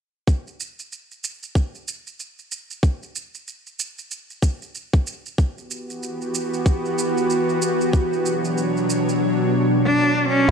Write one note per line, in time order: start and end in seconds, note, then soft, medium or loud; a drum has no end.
0.27 kick medium
0.27 shaker soft
0.47 shaker soft
0.60 shaker medium
0.79 shaker soft
0.92 shaker soft
1.11 shaker soft
1.24 shaker medium
1.43 shaker soft
1.55 kick medium
1.55 shaker soft
1.75 shaker soft
1.88 shaker medium
2.07 shaker soft
2.20 shaker soft
2.39 shaker soft
2.52 shaker medium
2.71 shaker soft
2.83 kick loud
2.83 shaker soft
3.03 shaker soft
3.15 shaker medium
3.35 shaker soft
3.48 shaker soft
3.67 shaker soft
3.79 shaker medium
3.98 shaker soft
4.11 shaker soft
4.30 shaker soft
4.42 kick medium
4.42 shaker medium
4.62 shaker soft
4.75 shaker soft
4.93 kick medium
4.93 shaker soft
5.07 shaker medium
5.26 shaker soft
5.38 7.91 E3 medium
5.38 7.91 B3 medium
5.38 7.91 F#4 medium
5.38 7.91 G4 medium
5.38 kick loud
5.38 shaker soft
5.58 shaker soft
5.71 shaker medium
5.90 shaker soft
6.03 shaker soft
6.22 shaker soft
6.34 shaker medium
6.53 shaker soft
6.66 kick loud
6.66 shaker soft
6.85 shaker soft
6.98 shaker medium
7.17 shaker soft
7.30 shaker soft
7.49 shaker soft
7.62 shaker medium
7.81 shaker soft
7.93 10.46 B2 medium
7.93 10.46 F#3 medium
7.93 10.46 D4 medium
7.93 10.46 C#5 medium
7.93 kick loud
7.93 shaker soft
8.13 shaker soft
8.26 shaker medium
8.45 shaker soft
8.58 shaker soft
8.77 shaker soft
8.90 shaker medium
9.09 shaker soft
9.85 10.25 D4 loud
10.28 10.51 C#4 loud